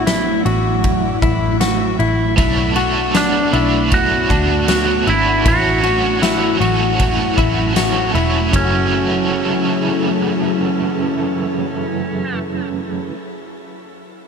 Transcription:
Already playing: A1 F#3 A3 E4
0.07 E4, snare, ride, tambourine
0.45 A1 F#4, ride
0.84 kick, ride
1.22 A1 E4, kick, ride
1.61 F#4, snare, ride, tambourine
1.99 A1 E4, ride
2.36 B1 B2 F#3 A3 B3 D4 E4, kick, ride
2.41 F#4
2.75 D4 F#4, ride
2.80 A3
3.14 B2 F#3 A3 D4 F#4, snare, ride, tambourine
3.52 B1 D4 E4 F#4, ride
3.58 A3
3.90 F#3 A3 D4, kick, ride
3.96 F#4
4.29 D2 D4 F#4, kick, ride
4.35 A3
4.68 B2 F#3 A3 D4 F#4, snare, ride, tambourine
5.06 G#1 D4 E4 F#4, ride
5.12 A3
5.45 A1 A2 E3 F#3 A3 E4 F#4, kick, ride
5.83 A3 C#4 F#4, ride
5.89 F#3
6.22 A2 E3 F#3 A3 C#4 E4 F#4, snare, ride, tambourine
6.60 A1 A3 C#4 F#4, ride
6.65 F#3
6.98 F#3 A3, kick, ride
7.03 C#4 F#4
7.37 A1 A3 C#4 E4 F#4, kick, ride
7.43 F#3
7.75 A2 E3 F#3 A3 C#4 F#4, snare, ride, tambourine
7.79 F#4
8.14 E1 A3 C#4 E4 F#4, ride
8.19 F#3
8.48 F#2
8.52 F#1 C#3 E3 F#3 C#4 E4 G#4 A4, kick, ride bell
8.57 A3
8.61 C#4 F#4
8.66 F#4

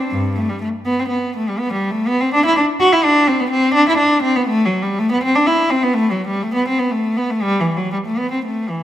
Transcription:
Already playing: C4
0.11 G2
0.36 A3
0.49 G3
0.60 A3
0.85 B3
0.99 C4
1.08 B3
1.36 A3
1.49 G3
1.58 B3
1.73 G3
1.91 A3
2.07 B3
2.20 C4
2.34 D4
2.45 E4
2.57 D4
2.80 F#4
2.92 E4
3.04 D4
3.27 C4
3.40 B3
3.50 C4
3.74 D4
3.89 E4
3.97 D4
4.22 C4
4.36 B3
4.47 A3
4.65 F#3
4.82 G3
4.99 A3
5.12 B3
5.23 C4
5.35 D4
5.46 E4
5.70 C4
5.83 B3
5.94 A3
6.10 F#3
6.27 G3
6.42 A3
6.54 B3
6.68 C4
6.78 B3
6.91 A3
7.17 B3
7.30 A3
7.42 G3
7.61 E3
7.77 F#3
7.92 G3
8.06 A3
8.18 B3
8.31 C4
8.45 A3
8.69 E3

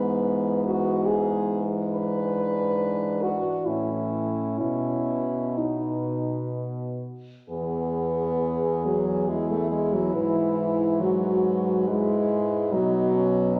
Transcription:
Already playing: G#2 E3 B3 B4
0.65 F#4
1.07 G#4
1.93 D4 B4
3.22 F#4
3.65 A2 C#4 E4
4.60 B2 E4
5.57 B3 D#4
7.50 E2 B3 G#4
8.41 G#4
8.85 F#3
9.29 G#3 E4
9.51 A3
9.71 G#3
9.93 F#3
10.14 G#2 E3 B4
11.00 F#3 F#4
11.88 G#3 E4
12.72 B2 F#3 D#4
13.15 C#4
13.56 D#4

